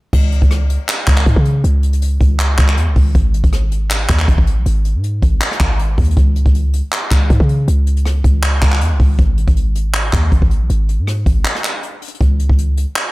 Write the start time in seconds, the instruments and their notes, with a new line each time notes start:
0.13 808-style bass C#2, kick, crash
0.32 closed hi-hat
0.42 808-style bass C#2, kick, closed hi-hat
0.51 cross-stick, closed hi-hat
0.70 closed hi-hat
0.89 clap, closed hi-hat
1.07 808-style bass C#2, kick, clap, closed hi-hat
1.17 clap
1.26 808-style bass G#2, kick, closed hi-hat
1.36 808-style bass C#3, kick
1.45 closed hi-hat
1.64 808-style bass C#2, closed hi-hat
1.83 closed hi-hat
1.93 closed hi-hat
2.02 closed hi-hat
2.21 808-style bass C#2, kick, closed hi-hat
2.40 clap, closed hi-hat
2.58 808-style bass C#2, kick, clap, closed hi-hat
2.68 clap
2.77 808-style bass E2, closed hi-hat
2.87 808-style bass C#2
2.96 808-style bass C#2, kick, open hi-hat
3.15 808-style bass G#1, kick, closed hi-hat
3.34 closed hi-hat
3.44 808-style bass G#1, kick, closed hi-hat
3.53 cross-stick, closed hi-hat
3.72 closed hi-hat
3.90 clap, closed hi-hat
4.09 808-style bass D#2, kick, clap, closed hi-hat
4.19 clap
4.28 808-style bass G#1, kick, closed hi-hat
4.38 808-style bass G#1, kick
4.47 closed hi-hat
4.57 808-style bass B1
4.66 808-style bass G#1, closed hi-hat
4.85 closed hi-hat
4.95 808-style bass G#2
5.04 closed hi-hat
5.22 808-style bass G#1, kick, closed hi-hat
5.41 clap, closed hi-hat
5.51 cross-stick
5.60 808-style bass G#1, kick, clap, closed hi-hat
5.79 closed hi-hat
5.98 808-style bass D#2, kick, closed hi-hat, open hi-hat
6.04 closed hi-hat
6.11 closed hi-hat
6.17 808-style bass C#2, kick, closed hi-hat
6.36 closed hi-hat
6.46 808-style bass C#2, kick, closed hi-hat
6.55 closed hi-hat
6.73 closed hi-hat
6.92 clap, closed hi-hat
7.11 808-style bass C#2, kick, clap, closed hi-hat
7.30 808-style bass G#2, kick, closed hi-hat
7.40 808-style bass C#3, kick
7.49 closed hi-hat
7.68 808-style bass C#2, closed hi-hat
7.87 closed hi-hat
7.97 closed hi-hat
8.06 cross-stick, closed hi-hat
8.24 808-style bass C#2, kick, closed hi-hat
8.43 clap, closed hi-hat
8.62 808-style bass C#2, kick, clap, closed hi-hat
8.72 clap
8.81 808-style bass E2, closed hi-hat
8.91 808-style bass C#2
9.00 808-style bass C#2, kick, open hi-hat
9.19 808-style bass G#1, kick, closed hi-hat
9.38 closed hi-hat
9.48 808-style bass G#1, kick, closed hi-hat
9.56 closed hi-hat
9.75 closed hi-hat
9.94 clap, closed hi-hat
10.13 808-style bass D#2, kick, clap, closed hi-hat
10.32 808-style bass G#1, kick, closed hi-hat
10.42 808-style bass G#1, kick
10.51 closed hi-hat
10.61 808-style bass B1
10.70 808-style bass G#1, closed hi-hat
10.89 closed hi-hat
10.99 808-style bass G#2
11.07 cross-stick, closed hi-hat
11.26 808-style bass G#1, kick, closed hi-hat
11.45 clap, closed hi-hat
11.55 cross-stick
11.64 clap, closed hi-hat
11.83 closed hi-hat
12.02 closed hi-hat, open hi-hat
12.08 closed hi-hat
12.14 closed hi-hat
12.21 808-style bass C#2, kick, closed hi-hat
12.40 closed hi-hat
12.49 808-style bass C#2, kick
12.58 closed hi-hat
12.77 closed hi-hat
12.96 clap, closed hi-hat